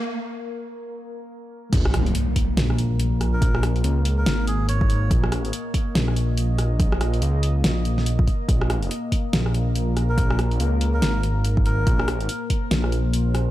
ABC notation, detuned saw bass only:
X:1
M:4/4
L:1/8
Q:"Swing 16ths" 1/4=142
K:Bbm
V:1 name="Detuned saw bass" clef=bass
z8 | B,,,2 z2 B,,,4- | B,,,2 D,,2 A,,,4 | B,,,2 z2 B,,,4- |
B,,,2 D,,2 B,,,3 z | B,,,2 z2 B,,,4- | B,,,2 D,,2 A,,,4 | B,,,2 z2 B,,,4 |]